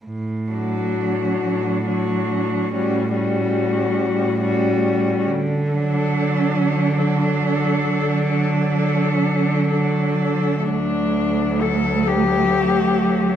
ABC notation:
X:1
M:6/8
L:1/8
Q:3/8=45
K:D
V:1 name="Cello"
z F3 F2 | F F3 F2 | z A3 A2- | A A3 A2 |
D2 A G3 |]
V:2 name="Cello"
z D3 D2 | C C3 C2 | z D3 D2- | D D3 D2 |
A,6 |]
V:3 name="Cello" clef=bass
z F,3 F,2 | G, G,3 G,2 | z F,3 F,2- | F, F,3 F,2 |
F,6 |]
V:4 name="Cello" clef=bass
A,,3 A,,3 | A,,3 A,,3 | D,3 D,3 | D,3 D,3 |
D,,6 |]